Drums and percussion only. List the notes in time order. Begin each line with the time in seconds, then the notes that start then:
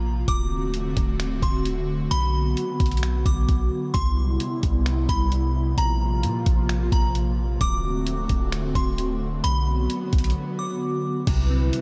0.28 kick, closed hi-hat
0.74 closed hi-hat
0.97 kick, closed hi-hat
1.20 finger snap, closed hi-hat
1.42 kick, closed hi-hat
1.65 closed hi-hat
2.11 closed hi-hat
2.57 closed hi-hat
2.80 kick, closed hi-hat, open hi-hat
2.86 closed hi-hat
2.91 closed hi-hat
2.97 closed hi-hat
3.03 finger snap, closed hi-hat
3.26 kick, closed hi-hat
3.49 kick, closed hi-hat
3.94 kick, closed hi-hat
4.40 closed hi-hat
4.63 kick, closed hi-hat
4.86 finger snap, closed hi-hat
5.09 kick, closed hi-hat
5.32 closed hi-hat
5.78 closed hi-hat
6.23 closed hi-hat
6.46 kick, closed hi-hat
6.69 finger snap, closed hi-hat
6.92 kick, closed hi-hat
7.15 closed hi-hat
7.61 kick, closed hi-hat
8.07 closed hi-hat
8.29 kick, closed hi-hat
8.52 finger snap, closed hi-hat
8.75 kick, closed hi-hat
8.98 closed hi-hat
9.44 closed hi-hat
9.90 closed hi-hat
10.13 kick, closed hi-hat, open hi-hat
10.18 closed hi-hat
10.24 closed hi-hat
10.30 closed hi-hat
11.27 kick, closed hi-hat, crash
11.73 closed hi-hat